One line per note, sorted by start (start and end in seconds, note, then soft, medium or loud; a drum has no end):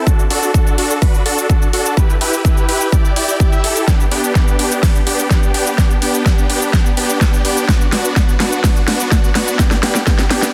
0.07 0.24 D4 medium
0.07 0.24 F#4 medium
0.07 0.24 A4 medium
0.07 kick loud
0.07 shaker medium
0.19 shaker soft
0.30 0.51 D4 medium
0.30 0.51 F#4 medium
0.30 0.51 A4 loud
0.30 open hi-hat loud
0.43 shaker medium
0.54 kick loud
0.54 shaker medium
0.67 shaker soft
0.78 0.98 D4 medium
0.78 0.98 F#4 medium
0.78 0.98 A4 loud
0.78 open hi-hat loud
0.91 shaker medium
1.02 1.22 B4 medium
1.02 kick loud
1.02 open hi-hat medium
1.02 shaker medium
1.15 shaker soft
1.26 1.47 D4 medium
1.26 1.47 F#4 medium
1.26 1.47 A4 loud
1.26 open hi-hat loud
1.38 shaker medium
1.50 1.67 F#4 medium
1.50 kick loud
1.50 shaker medium
1.62 shaker soft
1.73 1.94 D4 medium
1.73 1.94 F#4 medium
1.73 1.94 A4 medium
1.73 open hi-hat loud
1.86 shaker medium
1.97 2.15 E4 medium
1.97 2.15 G4 medium
1.97 2.15 B4 medium
1.97 kick loud
1.97 shaker medium
2.10 shaker soft
2.21 2.42 E4 medium
2.21 2.42 G4 medium
2.21 2.42 B4 loud
2.21 open hi-hat loud
2.34 shaker medium
2.45 2.66 E4 medium
2.45 kick loud
2.45 shaker medium
2.57 shaker soft
2.69 2.89 E4 medium
2.69 2.89 G4 medium
2.69 2.89 B4 loud
2.69 open hi-hat loud
2.81 shaker medium
2.92 3.13 E4 medium
2.92 3.13 G4 medium
2.92 kick loud
2.92 shaker medium
3.05 shaker soft
3.16 3.26 E4 medium
3.16 3.26 G4 medium
3.16 3.26 D5 medium
3.16 open hi-hat loud
3.28 3.37 E4 medium
3.28 3.37 G4 medium
3.28 3.37 D5 medium
3.28 shaker medium
3.40 kick loud
3.40 shaker medium
3.52 3.62 E4 medium
3.52 3.62 G4 medium
3.52 3.62 E5 loud
3.52 shaker soft
3.64 3.85 E4 medium
3.64 3.85 G4 medium
3.64 3.85 A4 medium
3.64 open hi-hat loud
3.76 open hi-hat medium
3.76 shaker medium
3.88 4.05 B3 medium
3.88 4.05 D4 medium
3.88 4.05 G4 medium
3.88 kick loud
3.88 snare soft
3.88 shaker medium
4.00 shaker soft
4.11 4.32 B3 medium
4.11 4.32 D4 medium
4.11 4.32 G4 medium
4.11 open hi-hat loud
4.24 shaker medium
4.35 4.56 B3 medium
4.35 4.56 G4 medium
4.35 kick loud
4.35 snare soft
4.35 shaker soft
4.48 shaker soft
4.59 4.79 B3 medium
4.59 4.79 D4 medium
4.59 4.79 G4 medium
4.59 open hi-hat loud
4.72 shaker medium
4.83 5.01 B3 medium
4.83 5.01 D4 medium
4.83 5.01 G4 medium
4.83 kick loud
4.83 snare medium
4.83 open hi-hat medium
4.83 shaker medium
4.96 shaker soft
5.07 5.28 B3 medium
5.07 5.28 D4 medium
5.07 5.28 G4 medium
5.07 open hi-hat loud
5.19 shaker medium
5.30 5.51 B3 medium
5.30 5.51 D4 medium
5.30 5.51 G4 loud
5.30 kick loud
5.30 snare medium
5.30 shaker medium
5.43 shaker soft
5.54 5.75 B3 medium
5.54 5.75 D4 medium
5.54 5.75 G4 loud
5.54 open hi-hat loud
5.67 shaker medium
5.78 5.96 B3 medium
5.78 5.96 D4 medium
5.78 5.96 G4 medium
5.78 kick loud
5.78 snare medium
5.78 shaker medium
5.91 shaker soft
6.02 6.23 B3 medium
6.02 6.23 D4 medium
6.02 6.23 G4 loud
6.02 open hi-hat loud
6.15 shaker medium
6.26 6.47 B3 medium
6.26 6.47 D4 medium
6.26 6.47 G4 loud
6.26 kick loud
6.26 snare medium
6.26 shaker medium
6.38 shaker soft
6.50 6.70 B3 medium
6.50 6.70 D4 medium
6.50 6.70 G4 loud
6.50 open hi-hat loud
6.62 shaker medium
6.73 6.91 B3 medium
6.73 6.91 D4 medium
6.73 6.91 G4 medium
6.73 kick loud
6.73 snare medium
6.73 shaker medium
6.86 shaker soft
6.97 7.18 B3 medium
6.97 7.18 D4 medium
6.97 7.18 G4 medium
6.97 open hi-hat loud
7.10 shaker medium
7.21 7.42 D4 medium
7.21 kick loud
7.21 snare medium
7.21 shaker medium
7.34 shaker soft
7.45 7.65 B3 loud
7.45 7.65 D4 medium
7.45 7.65 G4 loud
7.45 open hi-hat loud
7.57 shaker medium
7.69 7.86 B3 medium
7.69 7.86 D4 medium
7.69 7.86 F#4 medium
7.69 kick loud
7.69 snare medium
7.69 shaker medium
7.81 shaker soft
7.92 8.13 B3 medium
7.92 8.13 D4 medium
7.92 8.13 F#4 loud
7.92 snare medium
7.92 open hi-hat loud
8.05 shaker medium
8.16 8.34 B3 medium
8.16 8.34 D4 medium
8.16 8.34 F#4 medium
8.16 kick loud
8.16 snare medium
8.16 shaker medium
8.29 shaker soft
8.40 8.61 B3 medium
8.40 8.61 D4 medium
8.40 8.61 F#4 loud
8.40 snare medium
8.40 open hi-hat loud
8.53 shaker medium
8.64 8.82 B3 medium
8.64 8.82 D4 medium
8.64 8.82 F#4 medium
8.64 kick loud
8.64 snare medium
8.64 open hi-hat medium
8.64 shaker medium
8.76 shaker soft
8.88 9.09 B3 medium
8.88 9.09 D4 medium
8.88 9.09 F#4 loud
8.88 snare medium
8.88 open hi-hat loud
9.00 shaker medium
9.11 9.29 B3 medium
9.11 9.29 D4 medium
9.11 9.29 F#4 medium
9.11 kick loud
9.11 snare medium
9.11 shaker medium
9.24 shaker soft
9.35 9.56 B3 medium
9.35 9.56 D4 medium
9.35 9.56 F#4 loud
9.35 snare medium
9.35 open hi-hat loud
9.48 shaker medium
9.59 9.77 B3 medium
9.59 9.77 D4 medium
9.59 9.77 G4 medium
9.59 kick loud
9.59 snare medium
9.59 shaker medium
9.71 snare medium
9.71 shaker soft
9.83 10.01 B3 medium
9.83 10.01 D4 medium
9.83 10.01 G4 medium
9.83 snare loud
9.83 open hi-hat loud
9.95 snare medium
9.95 shaker medium
10.07 10.24 B3 medium
10.07 10.24 D4 medium
10.07 10.24 G4 loud
10.07 kick loud
10.07 snare loud
10.07 shaker medium
10.19 snare medium
10.19 shaker soft
10.31 10.48 B3 medium
10.31 10.48 D4 medium
10.31 10.48 G4 medium
10.31 snare loud
10.31 open hi-hat loud
10.42 snare medium
10.42 shaker medium